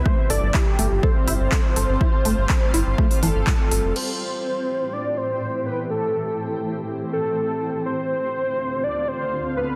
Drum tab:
CC |----------------|----------------|x---------------|----------------|
HH |--o---o---o---o-|--o---o--oo---o-|----------------|----------------|
CP |----x-------x---|----x-------x---|----------------|----------------|
BD |o---o---o---o---|o---o---o---o---|----------------|----------------|

CC |----------------|
HH |----------------|
CP |----------------|
BD |----------------|